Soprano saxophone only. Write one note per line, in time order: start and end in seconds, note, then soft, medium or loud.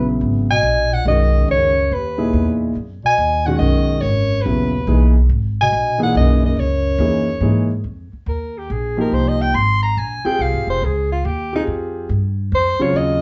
0.50 0.95 G#5 loud
0.93 1.07 F#5 loud
1.08 1.46 D#5 medium
1.51 1.95 C#5 medium
1.94 2.63 B4 medium
3.06 3.47 G#5 loud
3.46 3.58 F#5 medium
3.59 4.03 D#5 loud
4.01 4.43 C#5 medium
4.42 5.14 B4 medium
5.61 5.99 G#5 loud
6.03 6.15 F#5 medium
6.17 6.42 D#5 loud
6.46 6.61 D#5 medium
6.60 7.72 C#5 medium
8.29 8.59 A#4 medium
8.58 8.73 G4 medium
8.71 8.99 G#4 medium
9.01 9.15 A#4 medium
9.14 9.30 C5 medium
9.29 9.43 D#5 medium
9.42 9.56 G5 medium
9.55 9.82 C6 medium
9.83 10.00 A#5 loud
9.98 10.27 G#5 medium
10.26 10.43 G5 medium
10.42 10.69 F5 medium
10.70 10.86 C5 medium
10.85 11.12 G#4 medium
11.12 11.27 F4 medium
11.26 11.53 G4 medium
11.56 11.63 D#4 medium
12.55 12.84 C5 medium
12.82 12.98 C#5 medium
12.97 13.21 D#5 medium